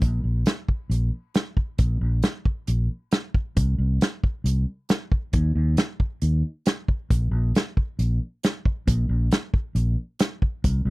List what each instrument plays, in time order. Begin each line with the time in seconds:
0.02 fingered electric bass A#1, kick, closed hi-hat
0.24 fingered electric bass A#1
0.46 snare, closed hi-hat
0.68 kick
0.90 fingered electric bass A#1, closed hi-hat
1.34 snare, closed hi-hat
1.57 kick
1.78 fingered electric bass A#1, kick, closed hi-hat
2.01 fingered electric bass A#1
2.22 snare, closed hi-hat
2.45 kick
2.67 fingered electric bass A#1, closed hi-hat
3.11 snare, closed hi-hat
3.34 kick
3.57 fingered electric bass C2, kick, closed hi-hat
3.78 fingered electric bass C2
4.01 snare, closed hi-hat
4.24 kick
4.44 fingered electric bass C2, closed hi-hat
4.89 snare, closed hi-hat
5.12 kick
5.33 fingered electric bass D#2, kick, closed hi-hat
5.55 fingered electric bass D#2
5.77 snare, closed hi-hat
6.00 kick
6.22 fingered electric bass D#2, closed hi-hat
6.66 snare, closed hi-hat
6.88 kick
7.10 fingered electric bass A#1, kick, closed hi-hat
7.31 fingered electric bass A#1
7.55 snare, closed hi-hat
7.77 kick
7.99 fingered electric bass A#1, closed hi-hat
8.43 snare, closed hi-hat
8.65 kick
8.87 fingered electric bass A#1, kick, closed hi-hat
9.09 fingered electric bass A#1
9.31 snare, closed hi-hat
9.54 kick
9.75 fingered electric bass A#1, closed hi-hat
10.19 snare, closed hi-hat
10.42 kick
10.64 fingered electric bass C2, kick, closed hi-hat
10.85 fingered electric bass C2